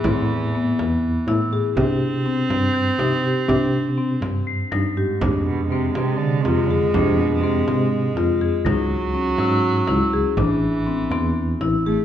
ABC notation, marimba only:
X:1
M:7/8
L:1/8
Q:1/4=122
K:Am
V:1 name="Marimba"
C2 B, B,2 E ^G | D2 C C2 _E G | D2 C C2 _E G | D2 C C2 F _A |
D2 C C2 F _A | ^D2 ^C C2 E ^G | D2 C C2 E ^G |]